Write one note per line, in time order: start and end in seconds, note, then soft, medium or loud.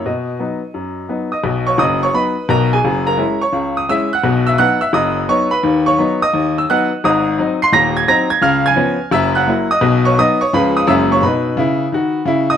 0.06 0.35 B2 medium
0.06 1.32 D#5 medium
0.39 0.59 F#3 soft
0.39 0.59 B3 soft
0.39 0.59 D#4 soft
0.74 1.04 F#2 soft
1.09 1.28 F#3 soft
1.09 1.29 B3 soft
1.09 1.29 D#4 soft
1.32 1.65 D#5 soft
1.32 1.67 D#6 medium
1.43 1.72 B1 medium
1.43 1.72 B2 medium
1.67 1.79 C#5 medium
1.67 1.79 C#6 medium
1.78 2.07 F#1 medium
1.78 2.07 F#2 medium
1.78 2.01 D#5 medium
1.78 2.02 D#6 medium
2.03 2.15 C#5 medium
2.03 2.15 C#6 medium
2.14 2.33 F#3 soft
2.14 2.33 B3 soft
2.14 2.33 D#4 soft
2.14 2.48 B4 medium
2.14 2.49 B5 medium
2.49 2.77 B1 medium
2.49 2.77 B2 medium
2.49 2.71 A#4 medium
2.49 2.72 A#5 medium
2.73 3.05 G#4 medium
2.73 3.07 G#5 medium
2.85 3.14 F#1 medium
2.85 3.14 F#2 medium
3.07 3.40 A#4 medium
3.07 3.42 A#5 medium
3.17 3.37 G#3 soft
3.17 3.38 C#4 soft
3.17 3.38 E4 medium
3.41 3.75 C#5 medium
3.41 3.77 C#6 medium
3.53 3.83 C#2 medium
3.53 3.83 C#3 medium
3.77 3.89 D#6 medium
3.89 4.08 G#3 soft
3.89 4.08 C#4 medium
3.89 4.09 E4 soft
3.89 4.11 E5 medium
3.89 4.12 E6 loud
4.13 4.46 F#5 medium
4.13 4.47 F#6 medium
4.24 4.53 B1 medium
4.24 4.53 B2 medium
4.47 4.59 E5 medium
4.47 4.59 E6 medium
4.58 4.77 F#3 soft
4.58 4.78 B3 soft
4.58 4.78 D#4 soft
4.58 4.80 F#5 medium
4.58 4.81 F#6 loud
4.81 4.93 E5 medium
4.81 4.93 E6 medium
4.93 5.23 F#1 medium
4.93 5.23 F#2 medium
4.93 5.26 D#5 medium
4.93 5.29 D#6 medium
5.29 5.48 F#3 soft
5.29 5.48 B3 soft
5.29 5.48 D#4 medium
5.29 5.51 C#5 medium
5.29 5.51 C#6 medium
5.51 5.84 B4 medium
5.51 5.86 B5 medium
5.63 5.93 D#2 medium
5.63 5.93 D#3 medium
5.86 6.20 C#5 medium
5.86 6.21 C#6 medium
5.98 6.17 F#3 medium
5.98 6.18 B3 soft
5.98 6.18 D#4 medium
6.22 6.55 D#5 medium
6.22 6.57 D#6 loud
6.33 6.63 D#2 medium
6.33 6.63 D#3 medium
6.58 6.69 E6 medium
6.69 6.88 F#3 medium
6.69 6.88 B3 medium
6.69 6.89 D#4 medium
6.69 6.91 F#5 medium
6.69 6.92 F#6 medium
7.04 7.33 G#1 medium
7.04 7.33 G#2 medium
7.04 7.58 D#5 medium
7.04 7.61 D#6 medium
7.38 7.57 F#3 medium
7.38 7.58 C4 medium
7.38 7.58 D#4 medium
7.62 7.73 C6 medium
7.62 7.73 C7 loud
7.72 8.02 D#1 medium
7.72 8.02 D#2 medium
7.72 7.95 A#5 medium
7.72 7.96 A#6 loud
7.97 8.08 G#6 medium
8.08 8.27 F#3 medium
8.08 8.27 C4 medium
8.08 8.27 D#4 medium
8.08 8.30 A#5 medium
8.08 8.31 A#6 loud
8.30 8.42 G#6 medium
8.42 8.72 C#2 medium
8.42 8.72 C#3 medium
8.42 8.64 F5 medium
8.42 8.65 F6 medium
8.66 9.10 G#5 medium
8.66 9.12 G#6 loud
8.76 8.95 F3 medium
8.76 8.96 B3 medium
8.76 8.96 C#4 medium
9.11 9.41 F#1 medium
9.11 9.42 F#2 medium
9.11 9.34 E5 medium
9.11 9.35 E6 loud
9.35 9.68 F#5 medium
9.35 9.70 F#6 medium
9.47 9.66 F#3 medium
9.47 9.67 A#3 medium
9.47 9.67 E4 medium
9.71 10.03 D#5 medium
9.71 10.05 D#6 medium
9.81 10.11 B1 medium
9.81 10.11 B2 loud
10.05 10.17 C#5 medium
10.05 10.17 C#6 medium
10.18 10.37 F#3 medium
10.18 10.37 B3 medium
10.18 10.38 D#4 medium
10.18 10.40 D#5 medium
10.18 10.41 D#6 loud
10.41 10.52 C#5 medium
10.41 10.53 C#6 medium
10.53 10.83 C#2 medium
10.53 10.82 C#3 medium
10.53 10.72 F3 medium
10.53 10.73 G#3 soft
10.53 10.73 C#4 soft
10.53 10.75 B4 medium
10.53 10.76 B5 medium
10.77 10.88 D#6 medium
10.87 11.17 F#1 medium
10.87 11.17 F#2 medium
10.87 11.07 G#3 medium
10.87 11.07 A#3 medium
10.87 11.07 C#4 soft
10.87 11.09 E5 medium
10.87 11.10 E6 medium
11.12 11.23 C#5 medium
11.12 11.23 C#6 medium
11.22 11.50 B2 medium
11.22 11.51 D#4 medium
11.22 12.47 B4 medium
11.22 12.50 B5 medium
11.57 11.85 C#3 medium
11.57 11.86 E4 medium
11.92 12.20 D#3 medium
11.92 12.21 F#4 medium
12.25 12.54 C#3 medium
12.25 12.55 E4 medium
12.50 12.57 D#5 medium
12.50 12.57 D#6 medium